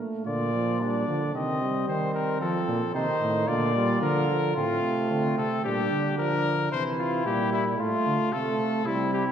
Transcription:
0.00 A3
0.26 A#2 D3 F4 D5
0.54 F3
0.80 G3 D4 D5
1.07 D3 F3
1.34 C3 D#3 C4 D#5
1.62 G3
1.87 D#3 C4 C5
2.14 A#4
2.41 F3 A4
2.68 A#2
2.94 C3 D#3 D#4 C5
3.21 A2
3.47 A#2 D3 F4 D5
3.75 G3
4.01 D3 F3 A#4
4.30 F3
4.56 A2 A3 C4 F4
4.83 C3
5.10 D3 C4
5.37 C3 A4
5.64 A#2 G3 D4 G4
5.91 D3
6.18 F3 A#4
6.72 C3 E3 E4 C5
6.98 F4
7.25 A#2 G3 G4
7.52 E4
7.79 A2 A3 F4
8.06 D3
8.32 C3 A3 F4 A4
8.59 C3
8.86 C3 G3 E4
9.13 G4

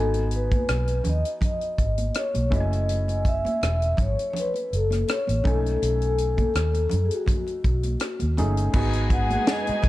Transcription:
Already playing: G#1 B3 D#4 F#4 G#5
0.00 A4
0.14 closed hi-hat, muted conga
0.31 closed hi-hat
0.36 B4
0.52 kick, closed hi-hat, high conga
0.68 B1, cross-stick, closed hi-hat
0.88 closed hi-hat, muted conga
1.04 D#2, closed hi-hat, low conga
1.09 D#5
1.25 closed hi-hat
1.41 kick, closed hi-hat, low conga
1.45 D#5
1.61 closed hi-hat
1.78 G#1, kick, closed hi-hat
1.98 closed hi-hat, high conga
2.14 C#5, cross-stick, closed hi-hat
2.34 B1, closed hi-hat, muted conga, high conga
2.50 F#1 A3 C#4 E4 F#4 D#5, kick, closed hi-hat, low conga
2.60 G#5
2.73 closed hi-hat
2.89 closed hi-hat, muted conga
3.08 closed hi-hat, muted conga
3.25 E5, kick, closed hi-hat
3.45 closed hi-hat, high conga
3.61 E1, cross-stick, closed hi-hat, muted conga
3.82 closed hi-hat
3.97 G#1, kick, closed hi-hat, low conga
4.01 C#5
4.19 closed hi-hat
4.30 C#5, muted conga, low conga
4.36 B4, closed hi-hat
4.54 closed hi-hat, muted conga
4.73 F#1 A4, closed hi-hat
4.90 cross-stick, closed hi-hat, high conga
5.08 C#5, cross-stick, closed hi-hat, muted conga
5.27 A1, closed hi-hat, high conga
5.44 A3 C#4 D#4 G#5, kick, closed hi-hat, low conga
5.48 A4
5.66 closed hi-hat
5.82 B1 A4, closed hi-hat, muted conga
6.02 closed hi-hat
6.18 closed hi-hat
6.38 kick, closed hi-hat, high conga
6.54 D#2, cross-stick, closed hi-hat, muted conga
6.74 closed hi-hat, muted conga
6.89 F#2, closed hi-hat, low conga
7.05 G#4
7.11 F#4, closed hi-hat
7.26 kick, closed hi-hat, high conga, low conga
7.47 closed hi-hat, muted conga
7.64 B1, kick, closed hi-hat
7.83 closed hi-hat, high conga
8.00 cross-stick, closed hi-hat
8.20 D#2, closed hi-hat, high conga
8.37 G1 A3 C#4 D#4 G#4, closed hi-hat, low conga
8.57 closed hi-hat
8.73 G#1 G#3 B3 D#4 F#4 G#4 B4 G#5, kick, crash, muted conga
8.93 closed hi-hat
9.10 F#5, kick, closed hi-hat
9.30 closed hi-hat, high conga
9.46 D#5, snare, closed hi-hat, muted conga
9.67 muted fingered electric bass stroke, closed hi-hat, muted conga
9.82 B1, kick, closed hi-hat, low conga

